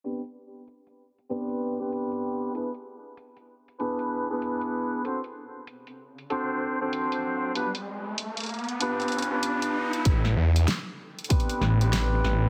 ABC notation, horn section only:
X:1
M:4/4
L:1/16
Q:"Swing 16ths" 1/4=96
K:Am
V:1 name="Horn section"
[B,CDGB] z6 z [B,CDGB]3 [B,CDGB]4- [B,CDGB] | [B,DE^GB] z6 z [B,DEGB]3 [B,DEGB]4- [B,DEGB] | [CD^FAc] z6 z [CDFAc]3 [CDFAc]4- [CDFAc] | [B,DFGB] z6 z [B,DFGB]3 [B,DFGB]4- [B,DFGB] |
[B,CDGB] z6 z [B,CDGB]3 [B,CDGB]4- [B,CDGB] |]